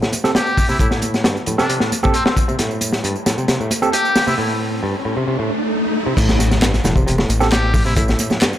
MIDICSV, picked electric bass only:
0, 0, Header, 1, 2, 480
1, 0, Start_track
1, 0, Key_signature, 0, "minor"
1, 0, Tempo, 447761
1, 858, Time_signature, 4, 2, 24, 8
1, 9203, End_track
2, 0, Start_track
2, 0, Title_t, "Picked electric bass"
2, 0, Program_c, 0, 34
2, 17, Note_on_c, 0, 45, 73
2, 128, Note_off_c, 0, 45, 0
2, 738, Note_on_c, 0, 48, 74
2, 813, Note_off_c, 0, 48, 0
2, 855, Note_on_c, 0, 45, 81
2, 1325, Note_off_c, 0, 45, 0
2, 1338, Note_on_c, 0, 43, 77
2, 1454, Note_off_c, 0, 43, 0
2, 1578, Note_on_c, 0, 45, 73
2, 1689, Note_off_c, 0, 45, 0
2, 1698, Note_on_c, 0, 48, 73
2, 1773, Note_off_c, 0, 48, 0
2, 1814, Note_on_c, 0, 48, 77
2, 1927, Note_off_c, 0, 48, 0
2, 1938, Note_on_c, 0, 45, 73
2, 2049, Note_off_c, 0, 45, 0
2, 2660, Note_on_c, 0, 48, 72
2, 2734, Note_off_c, 0, 48, 0
2, 2777, Note_on_c, 0, 45, 85
2, 3246, Note_off_c, 0, 45, 0
2, 3256, Note_on_c, 0, 43, 80
2, 3373, Note_off_c, 0, 43, 0
2, 3497, Note_on_c, 0, 45, 76
2, 3609, Note_off_c, 0, 45, 0
2, 3622, Note_on_c, 0, 48, 75
2, 3695, Note_off_c, 0, 48, 0
2, 3736, Note_on_c, 0, 48, 81
2, 3848, Note_off_c, 0, 48, 0
2, 3859, Note_on_c, 0, 45, 76
2, 3969, Note_off_c, 0, 45, 0
2, 4579, Note_on_c, 0, 48, 74
2, 4653, Note_off_c, 0, 48, 0
2, 4695, Note_on_c, 0, 45, 86
2, 5165, Note_off_c, 0, 45, 0
2, 5175, Note_on_c, 0, 43, 81
2, 5292, Note_off_c, 0, 43, 0
2, 5416, Note_on_c, 0, 45, 79
2, 5528, Note_off_c, 0, 45, 0
2, 5540, Note_on_c, 0, 48, 77
2, 5614, Note_off_c, 0, 48, 0
2, 5655, Note_on_c, 0, 48, 84
2, 5768, Note_off_c, 0, 48, 0
2, 5779, Note_on_c, 0, 45, 76
2, 5889, Note_off_c, 0, 45, 0
2, 6501, Note_on_c, 0, 48, 78
2, 6574, Note_off_c, 0, 48, 0
2, 6614, Note_on_c, 0, 45, 85
2, 7084, Note_off_c, 0, 45, 0
2, 7097, Note_on_c, 0, 43, 82
2, 7213, Note_off_c, 0, 43, 0
2, 7338, Note_on_c, 0, 45, 75
2, 7449, Note_off_c, 0, 45, 0
2, 7459, Note_on_c, 0, 48, 80
2, 7533, Note_off_c, 0, 48, 0
2, 7573, Note_on_c, 0, 48, 82
2, 7687, Note_off_c, 0, 48, 0
2, 7701, Note_on_c, 0, 45, 73
2, 7810, Note_off_c, 0, 45, 0
2, 8421, Note_on_c, 0, 48, 80
2, 8494, Note_off_c, 0, 48, 0
2, 8538, Note_on_c, 0, 45, 87
2, 9006, Note_off_c, 0, 45, 0
2, 9018, Note_on_c, 0, 43, 79
2, 9134, Note_off_c, 0, 43, 0
2, 9203, End_track
0, 0, End_of_file